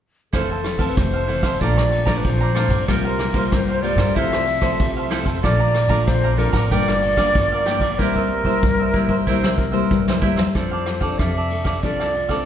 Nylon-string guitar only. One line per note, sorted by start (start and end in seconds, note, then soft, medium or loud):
0.34 0.94 F2 medium
0.34 0.76 E3 medium
0.34 0.77 A3 medium
0.34 0.77 C4 medium
0.79 1.23 E3 medium
0.79 1.23 A3 medium
0.79 1.23 C4 medium
0.97 1.58 C3 medium
1.28 1.55 E3 soft
1.28 1.55 A3 soft
1.28 1.56 C4 medium
1.61 2.22 A#2 medium
1.61 2.04 F3 medium
1.61 2.04 A3 medium
1.61 2.04 D4 medium
2.06 2.50 F3 medium
2.06 2.50 A3 medium
2.06 2.51 D4 medium
2.24 2.85 F2 medium
2.55 2.83 F3 medium
2.55 2.83 A3 medium
2.55 2.83 D4 medium
2.89 3.49 C3 medium
2.89 3.31 G3 medium
2.89 3.32 A#3 medium
2.89 3.32 F4 medium
3.34 3.78 G3 medium
3.34 3.78 A#3 medium
3.34 3.78 F4 medium
3.52 4.13 G2 medium
3.82 4.02 G3 medium
3.82 4.02 A#3 medium
3.82 4.02 F4 medium
4.15 4.76 C3 medium
4.15 4.45 F3 medium
4.15 4.46 A3 medium
4.15 4.46 E4 medium
4.61 5.05 F3 medium
4.61 5.06 A3 medium
4.61 5.06 E4 medium
4.79 5.40 C3 medium
5.10 5.30 F3 medium
5.10 5.30 A3 medium
5.10 5.30 E4 medium
5.43 6.04 A#2 medium
5.43 5.73 F3 medium
5.43 5.74 A3 medium
5.43 5.74 D4 medium
5.89 6.33 F3 medium
5.89 6.33 A3 medium
5.89 6.33 D4 medium
6.08 6.68 F2 medium
6.38 6.57 F3 medium
6.38 6.58 A3 medium
6.38 6.58 D4 medium
6.71 7.32 G2 medium
6.71 7.14 F3 medium
6.71 7.14 A#3 medium
6.71 7.15 D4 medium
7.18 7.61 F3 medium
7.18 7.62 A#3 medium
7.18 7.62 D4 medium
7.36 7.97 D3 medium
7.67 7.86 F3 medium
7.67 7.86 A#3 medium
7.67 7.86 D4 medium
8.00 8.60 C3 medium
8.00 8.29 G3 medium
8.00 8.30 A#3 medium
8.00 8.30 E4 medium
8.45 8.89 G3 medium
8.45 8.89 A#3 medium
8.45 8.89 E4 medium
8.63 9.24 G2 medium
8.95 9.14 G3 medium
8.95 9.14 A#3 soft
8.95 9.14 E4 medium
9.27 9.88 C3 medium
9.27 9.57 G3 medium
9.27 9.58 A#3 medium
9.27 9.58 E4 medium
9.73 10.17 G3 medium
9.73 10.17 A#3 medium
9.73 10.17 E4 medium
9.91 10.52 G2 medium
10.22 10.50 G3 medium
10.22 10.50 A#3 medium
10.22 10.50 E4 medium
10.56 11.16 F3 medium
10.56 10.99 C4 soft
10.56 10.99 D4 soft
10.56 10.99 A4 medium
11.02 11.45 C4 medium
11.02 11.46 D4 medium
11.02 11.46 A4 medium
11.20 11.80 C3 medium
11.51 11.78 C4 medium
11.51 11.78 D4 medium
11.51 11.78 A4 medium
11.84 12.44 F3 medium
11.84 12.14 C4 medium
11.84 12.14 D4 medium
11.84 12.14 A4 medium
12.29 12.45 C4 medium
12.29 12.45 D4 medium
12.29 12.45 A4 medium